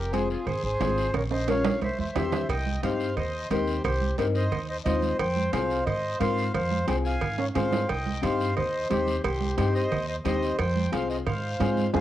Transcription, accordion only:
0.00 0.12 G4 medium
0.00 0.12 A#4 medium
0.13 0.29 G#4 medium
0.13 0.28 C5 medium
0.30 0.46 F4 medium
0.30 0.46 G#4 medium
0.46 0.63 G#4 medium
0.46 0.62 C5 medium
0.64 1.11 G#4 medium
0.64 1.16 C5 loud
1.15 1.23 A#4 medium
1.15 1.23 C#5 medium
1.32 1.48 C5 medium
1.32 1.47 D#5 medium
1.49 1.80 C#5 medium
1.49 1.80 F5 loud
1.83 1.99 C5 medium
1.83 1.98 E5 medium
1.99 2.15 C5 medium
1.99 2.15 E5 medium
2.16 2.48 C5 medium
2.16 2.47 E5 medium
2.49 2.81 D#5 medium
2.49 2.81 G5 medium
2.83 3.15 C5 medium
2.83 3.15 F5 medium
3.17 3.49 C5 medium
3.17 3.48 D#5 medium
3.51 3.83 G4 medium
3.51 3.82 C5 medium
3.84 4.16 G4 medium
3.84 4.16 C5 medium
4.18 4.27 G4 medium
4.18 4.25 C5 medium
4.34 4.67 C5 medium
4.34 4.66 D#5 medium
4.69 4.77 C5 medium
4.69 4.76 D#5 medium
4.85 5.17 C5 medium
4.85 5.17 D#5 medium
5.19 5.51 C5 medium
5.19 5.50 G5 loud
5.52 5.85 C5 medium
5.52 5.84 F5 medium
5.86 6.19 C5 medium
5.86 6.17 D#5 medium
6.20 6.52 C5 medium
6.20 6.52 F5 loud
6.54 6.86 C5 medium
6.54 6.85 F5 medium
6.87 6.96 C5 medium
6.87 6.95 G5 loud
7.04 7.36 F5 medium
7.04 7.39 G#5 medium
7.37 7.47 C#5 medium
7.37 7.45 F5 medium
7.55 7.87 C5 medium
7.55 7.90 F5 loud
7.88 8.21 D#5 medium
7.88 8.23 G5 loud
8.23 8.55 C5 medium
8.23 8.54 F5 medium
8.56 8.88 C5 medium
8.56 8.88 D#5 medium
8.89 9.22 G4 medium
8.89 9.21 C5 loud
9.23 9.56 G4 medium
9.23 9.55 C5 medium
9.56 9.74 G4 medium
9.56 9.74 C5 medium
9.74 10.07 C5 medium
9.74 10.05 D#5 loud
10.08 10.17 C5 medium
10.08 10.15 D#5 medium
10.25 10.57 C5 medium
10.25 10.56 D#5 loud
10.59 10.91 C5 medium
10.59 10.94 G5 medium
10.92 11.09 C5 medium
10.92 11.08 F5 medium
11.09 11.18 C5 medium
11.09 11.17 D#5 medium
11.27 11.90 C5 medium
11.27 11.90 F5 medium
11.94 12.01 G#4 medium
11.94 12.01 C5 medium
11.94 12.01 F5 medium

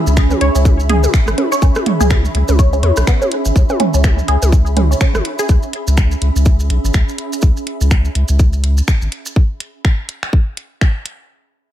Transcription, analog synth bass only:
0.07 0.35 C#2 loud
0.41 0.50 C#2 medium
0.55 1.07 C#2 loud
1.28 1.34 G#1 loud
1.62 1.71 C#2 loud
2.00 2.28 C#2 medium
2.35 2.43 C#2 medium
2.49 2.82 C#2 loud
2.83 2.92 E2 medium
2.97 3.03 B1 medium
3.46 3.52 G#1 medium
3.56 3.64 C#2 loud
3.94 4.22 C#2 medium
4.28 4.37 C#2 medium
4.42 4.94 C#2 loud
5.15 5.21 G#1 loud
5.49 5.58 C#2 loud
5.87 6.15 C#2 loud
6.22 6.30 C#2 loud
6.36 6.70 C#2 loud
6.70 6.79 B1 loud
6.84 6.90 G#1 loud
6.94 7.03 C#2 loud
7.43 7.51 C#2 loud
7.81 8.09 C#2 medium
8.15 8.24 C#2 medium
8.29 8.81 C#2 loud
9.02 9.08 G#1 loud

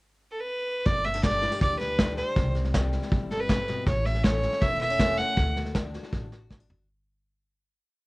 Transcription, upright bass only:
0.86 1.45 G1 medium
1.61 2.20 D2 medium
2.36 2.95 C2 medium
3.12 3.71 G1 medium
3.86 4.46 A1 medium
4.62 5.21 E1 medium
5.37 5.96 D2 medium
6.13 6.72 A1 medium

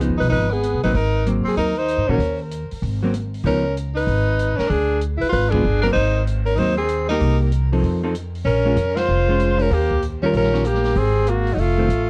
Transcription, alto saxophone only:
0.20 0.31 B4 medium
0.32 0.54 B4 loud
0.53 0.83 G#4 medium
0.83 0.97 B4 medium
0.96 1.26 A#4 medium
1.48 1.57 G#4 medium
1.59 1.80 A#4 medium
1.78 2.11 C5 medium
2.09 2.40 A#4 medium
3.47 3.75 A#4 medium
3.97 4.60 B4 loud
4.59 4.71 A#4 medium
4.70 5.01 G#4 medium
5.21 5.32 B4 medium
5.33 5.53 B4 loud
5.51 5.83 G#4 medium
5.83 5.89 A#4 medium
5.93 6.23 C5 loud
6.46 6.60 A#4 medium
6.58 6.78 C5 loud
6.78 7.07 G#4 medium
7.10 7.39 A#4 medium
8.46 8.99 A#4 medium
8.98 9.63 C5 loud
9.61 9.75 A#4 medium
9.74 10.03 G4 medium
10.26 10.34 A#4 medium
10.37 10.68 A#4 loud
10.67 11.00 G4 medium
10.98 11.31 G#4 medium
11.30 11.56 F#4 medium
11.55 11.62 D#4 medium
11.60 12.10 F4 medium

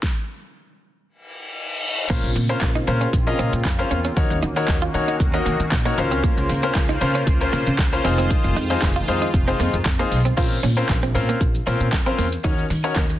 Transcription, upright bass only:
2.10 2.19 A#1 loud
2.24 2.32 A#1 loud
2.36 2.53 A#2 loud
2.61 2.78 A#1 medium
2.87 3.04 A#2 loud
3.13 3.30 A#1 loud
3.39 3.48 A#2 medium
3.53 3.61 A#2 loud
3.65 3.82 F2 medium
3.91 4.08 E2 medium
4.17 4.26 D#2 loud
4.31 4.38 D#2 loud
4.43 4.60 D#3 loud
4.68 4.85 D#2 loud
4.94 5.21 D#3 loud
5.20 5.37 D#2 loud
5.46 5.55 D#3 loud
5.60 5.68 D#3 loud
5.72 5.89 A#2 loud
5.98 6.24 C#2 medium
6.37 6.45 C#2 loud
6.50 6.66 C#3 loud
6.75 6.92 C#2 medium
7.01 7.18 C#3 loud
7.27 7.44 C#2 loud
7.53 7.62 C#3 loud
7.67 7.75 C#3 loud
7.79 7.95 C#2 loud
8.05 8.30 F1 loud
8.44 8.52 F1 medium
8.56 8.73 F2 loud
8.82 8.99 F1 loud
9.08 9.25 F2 medium
9.34 9.51 F1 loud
9.60 9.69 F2 loud
9.74 9.81 F2 medium
9.86 10.02 F2 loud
10.12 10.28 B1 medium
10.37 10.54 A#1 loud
10.63 10.80 A#2 loud
10.89 11.17 A#1 loud
11.15 11.32 A#2 loud
11.41 11.58 A#1 loud
11.67 11.76 A#2 loud
11.80 11.88 A#2 loud
11.92 12.09 F2 medium
12.19 12.35 E2 medium
12.44 12.61 D#2 loud
12.70 12.87 D#3 loud
12.96 13.13 D#2 loud

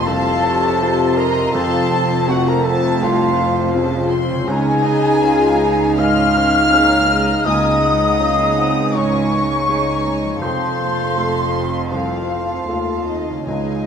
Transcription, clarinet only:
0.06 1.18 A4 loud
1.17 1.53 A#4 loud
1.53 2.30 A4 loud
2.28 2.50 F#4 loud
2.49 2.67 A#4 loud
2.65 3.03 A4 loud
3.02 3.74 F4 medium
4.48 6.01 G#4 loud
5.99 7.47 F5 loud
7.46 8.97 D#5 loud
8.96 10.41 C#5 loud
10.42 11.60 C5 loud
11.92 13.08 F4 medium
13.07 13.46 D#4 medium
13.47 13.86 D#4 medium

